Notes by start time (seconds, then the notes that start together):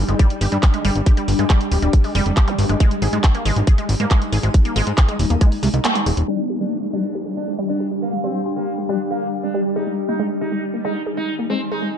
Already playing: G3 D4 G4 G5
0.08 G1 G#3, closed hi-hat
0.19 G3, kick, closed hi-hat
0.30 closed hi-hat
0.41 G1 G4, open hi-hat
0.52 G2 G3, closed hi-hat
0.63 kick, clap, closed hi-hat
0.74 G#3, closed hi-hat
0.85 G1 G3, open hi-hat
0.95 G1, closed hi-hat
1.06 G4, kick, closed hi-hat
1.17 G3, closed hi-hat
1.28 G1, open hi-hat
1.39 G2 G#3, closed hi-hat
1.50 G3, kick, clap, closed hi-hat
1.61 closed hi-hat
1.72 D1 G4, open hi-hat
1.82 D1 G3, closed hi-hat
1.93 kick, closed hi-hat
2.04 G#3, open hi-hat
2.15 F1 G3, open hi-hat
2.26 F1, closed hi-hat
2.37 G4, kick, clap, closed hi-hat
2.48 G3, closed hi-hat, zap
2.59 G1, open hi-hat
2.69 G1 G#3, closed hi-hat
2.80 G#3 D#4, kick, closed hi-hat
2.91 closed hi-hat
2.97 G#5
3.02 G#1 G#4, open hi-hat
3.13 G#2 G#3, closed hi-hat
3.24 kick, clap, closed hi-hat
3.35 A#3, closed hi-hat
3.45 G#1 G#3, open hi-hat
3.56 G#1, closed hi-hat
3.67 G#4, kick, closed hi-hat
3.78 G#3, closed hi-hat
3.89 G#1, open hi-hat
4.00 G#2 A#3, closed hi-hat
4.11 G#3, kick, clap, closed hi-hat
4.22 closed hi-hat
4.32 G#1 G#4, open hi-hat
4.43 G#1 G#3, closed hi-hat
4.54 kick, closed hi-hat
4.65 A#3, closed hi-hat
4.76 G#1 G#3, open hi-hat
4.87 G#2, closed hi-hat
4.98 G#4, kick, clap, closed hi-hat
5.08 G#3, closed hi-hat
5.19 D#1, open hi-hat
5.30 D#1 A#3, closed hi-hat
5.41 G#3, kick, closed hi-hat
5.52 open hi-hat
5.63 C2 G#3, open hi-hat
5.74 C2 D#4, closed hi-hat
5.85 A#3, clap, closed hi-hat
5.95 G#3, closed hi-hat
6.06 D#1 G#4, open hi-hat
6.17 D#1, closed hi-hat
6.28 G3 D4, downlifter
6.50 G4
6.61 G3 D4
6.67 G4
6.75 G5
6.82 G#3
6.93 G3 D4
7.15 G4
7.26 G3
7.37 D4
7.48 G#3
7.59 G3
7.69 D4
7.80 G4
7.91 G3
8.02 A#3
8.13 G#3
8.24 G3 C4
8.46 G4
8.56 G3 A#3
8.78 G#3
8.89 G3 D4
9.11 A#3 G4
9.22 G3
9.43 G#3 D4
9.54 G3
9.76 D#4 G#4
9.87 G#3
10.09 A#3 D#4
10.19 G#3
10.41 D#4 G#4
10.46 G#5
10.52 G#3
10.74 A#3
10.85 G#3 D#4
11.06 G#4
11.17 G#3 D#4
11.39 A#3
11.50 G#3 C4
11.72 D#4 G#4
11.82 G#3